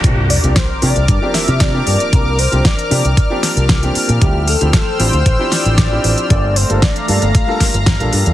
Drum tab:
HH |x-oxx-oxx-oxx-ox|x-oxxxoxx-oxxxox|x-oxx-oxx-oxx-ox|x-oxxxoxx-oxxxox|
SD |----o-----o-o---|----o-----o-o---|----o-----o-o---|----o-----o-o---|
BD |o---o---o---o---|o---o---o---o---|o---o---o---o---|o---o---o-o-o---|